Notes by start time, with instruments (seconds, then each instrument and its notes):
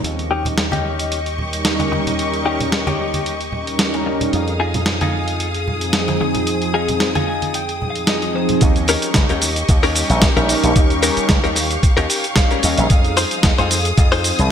0.04 slap bass D#2, analog synth pad G3 C#4 D#4 A#4, string section G4 D#5 C#6, closed hi-hat
0.19 closed hi-hat
0.31 clean electric guitar C#4 D#4 G4
0.45 analog synth pad G3 C#4 D#4 A#4, closed hi-hat, low conga
0.58 muted clean electric guitar stroke, snare, closed hi-hat
0.72 clean electric guitar C#4 D#4 G4, closed hi-hat, high conga
0.99 closed hi-hat
1.12 closed hi-hat
1.26 closed hi-hat
1.38 analog synth pad G3 C#4 D#4 A#4, low conga
1.53 closed hi-hat
1.65 muted clean electric guitar stroke, snare, closed hi-hat
1.80 muted clean electric guitar stroke, closed hi-hat, high conga
1.92 analog synth pad G3 C#4 D#4 A#4, muted clean electric guitar stroke, high conga
2.07 muted clean electric guitar stroke, closed hi-hat, low conga
2.19 analog synth pad G3 C#4 D#4 A#4, closed hi-hat
2.34 closed hi-hat
2.46 clean electric guitar C#4 D#4 G4
2.60 analog synth pad G3 C#4 D#4 A#4, closed hi-hat, low conga
2.72 muted clean electric guitar stroke, snare, closed hi-hat
2.87 clean electric guitar C#4 D#4 G4, closed hi-hat, high conga
3.14 closed hi-hat, high conga
3.26 closed hi-hat
3.41 closed hi-hat
3.52 analog synth pad G3 C#4 D#4 A#4, low conga
3.67 closed hi-hat
3.79 muted clean electric guitar stroke, snare, closed hi-hat
3.94 muted clean electric guitar stroke, closed hi-hat
4.06 muted clean electric guitar stroke
4.21 muted clean electric guitar stroke, closed hi-hat, low conga
4.33 slap bass F2, analog synth pad F3 C4 D#4 G#4, string section G#4 F5 D#6, closed hi-hat
4.48 closed hi-hat
4.60 clean electric guitar D#4 F4 G#4
4.74 analog synth pad F3 C4 D#4 G#4, closed hi-hat, low conga
4.86 muted clean electric guitar stroke, snare, closed hi-hat
5.01 clean electric guitar D#4 F4 G#4, closed hi-hat, high conga
5.28 closed hi-hat
5.40 closed hi-hat
5.54 closed hi-hat
5.66 analog synth pad F3 C4 D#4 G#4, low conga
5.81 closed hi-hat
5.93 muted clean electric guitar stroke, snare, closed hi-hat
6.08 muted clean electric guitar stroke, closed hi-hat, high conga
6.20 analog synth pad F3 C4 D#4 G#4, muted clean electric guitar stroke, high conga
6.35 muted clean electric guitar stroke, closed hi-hat, low conga
6.47 analog synth pad F3 C4 D#4 G#4, closed hi-hat
6.62 closed hi-hat
6.74 clean electric guitar D#4 F4 G#4
6.88 analog synth pad F3 C4 D#4 G#4, closed hi-hat, low conga
7.00 muted clean electric guitar stroke, snare, closed hi-hat
7.15 clean electric guitar D#4 F4 G#4, closed hi-hat, high conga
7.28 clean electric guitar G#5
7.42 closed hi-hat, high conga
7.54 clean electric guitar G5, closed hi-hat
7.69 closed hi-hat
7.80 analog synth pad F3 C4 D#4 G#4, low conga
7.90 clean electric guitar F5
7.96 closed hi-hat
8.07 clean electric guitar D#5, muted clean electric guitar stroke, snare, closed hi-hat
8.22 muted clean electric guitar stroke, closed hi-hat
8.35 clean electric guitar C5, muted clean electric guitar stroke
8.49 muted clean electric guitar stroke, closed hi-hat, low conga
8.61 slap bass D#2, analog synth pad G3 C#4 D#4 A#4, string section G4 D#5 C#6, kick, closed hi-hat, shaker
8.76 closed hi-hat, shaker
8.88 clean electric guitar C#4 D#4 G4 A#4, open hi-hat, shaker
9.02 analog synth pad G3 C#4 D#4 A#4, closed hi-hat, shaker
9.14 slap bass C#2, kick, snare, closed hi-hat, shaker
9.29 slap bass D#2, clean electric guitar C#4 D#4 G4 A#4, closed hi-hat, shaker
9.42 open hi-hat, shaker
9.56 closed hi-hat, shaker
9.69 slap bass D#2, muted clean electric guitar stroke, kick, closed hi-hat, shaker
9.83 clean electric guitar C#4 D#4 G4 A#4, finger snap, open hi-hat, shaker
9.95 analog synth pad G3 C#4 D#4 A#4, open hi-hat, shaker
10.10 slap bass A#1, closed hi-hat, shaker
10.22 kick, snare, closed hi-hat, shaker
10.36 slap bass A#1, clean electric guitar C#4 D#4 G4 A#4, closed hi-hat, shaker
10.49 analog synth pad G3 C#4 D#4 A#4, open hi-hat, shaker
10.63 slap bass A#1, closed hi-hat, shaker
10.75 slap bass D#2, analog synth pad G3 C#4 D#4 A#4, string section F5, kick, closed hi-hat, shaker
10.90 closed hi-hat, shaker
11.03 clean electric guitar C#4 D#4 G4 A#4, open hi-hat, shaker
11.17 analog synth pad G3 C#4 D#4 A#4, muted slap bass stroke, closed hi-hat, shaker
11.29 slap bass C#2, kick, snare, closed hi-hat, shaker
11.44 slap bass D#2, clean electric guitar C#4 D#4 G4 A#4, closed hi-hat, shaker
11.56 snare, open hi-hat, shaker
11.71 closed hi-hat, shaker
11.83 muted clean electric guitar stroke, kick, closed hi-hat, shaker
11.97 slap bass D#2, clean electric guitar C#4 D#4 G4 A#4, finger snap, closed hi-hat, shaker
12.10 clean electric guitar G5, open hi-hat, shaker
12.24 analog synth pad G3 C#4 D#4 C#5, closed hi-hat, shaker
12.36 clean electric guitar F5, kick, snare, closed hi-hat, shaker
12.51 clean electric guitar C#4 D#4 G4 A#4, closed hi-hat, shaker
12.63 slap bass D#2, analog synth pad G3 C#4 D#4 A#4, clean electric guitar D#5, open hi-hat, shaker
12.77 slap bass A#1, closed hi-hat, shaker
12.90 slap bass F2, analog synth pad F3 C4 D#4 G#4, string section G#4 D#6, kick, closed hi-hat, shaker
13.04 closed hi-hat, shaker
13.17 clean electric guitar D#4 F4 G#4 C5, open hi-hat, shaker
13.31 analog synth pad F3 C4 D#4 G#4, closed hi-hat, shaker
13.43 slap bass D#2, kick, snare, closed hi-hat, shaker
13.58 slap bass F2, clean electric guitar D#4 F4 G#4 C5, closed hi-hat, shaker
13.71 open hi-hat, shaker
13.85 closed hi-hat, shaker
13.97 slap bass F2, muted clean electric guitar stroke, kick, closed hi-hat, shaker
14.12 clean electric guitar D#4 F4 G#4 C5, finger snap, open hi-hat, shaker
14.24 analog synth pad F3 C4 D#4 G#4, open hi-hat, shaker
14.39 slap bass C2, closed hi-hat, shaker